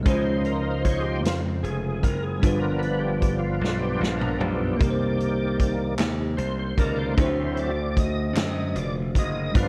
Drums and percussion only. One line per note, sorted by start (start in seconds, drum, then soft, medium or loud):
0.06 kick loud
0.06 closed hi-hat medium
0.45 closed hi-hat soft
0.85 kick medium
0.85 closed hi-hat medium
1.25 snare medium
1.25 closed hi-hat medium
1.64 closed hi-hat soft
2.03 kick medium
2.03 closed hi-hat medium
2.43 kick loud
2.43 closed hi-hat medium
2.83 closed hi-hat soft
3.22 kick medium
3.22 closed hi-hat medium
3.64 snare soft
4.03 snare medium
4.21 mid tom medium
4.41 floor tom medium
4.81 kick loud
4.81 closed hi-hat medium
5.20 closed hi-hat soft
5.59 kick medium
5.59 closed hi-hat medium
5.99 snare loud
5.99 clap medium
5.99 closed hi-hat medium
6.38 closed hi-hat medium
6.78 kick medium
6.78 closed hi-hat medium
7.18 kick loud
7.18 closed hi-hat medium
7.57 closed hi-hat soft
7.97 kick medium
7.97 closed hi-hat medium
8.36 snare loud
8.36 clap medium
8.36 closed hi-hat medium
8.76 closed hi-hat soft
9.15 kick medium
9.15 closed hi-hat medium
9.55 kick loud
9.55 closed hi-hat medium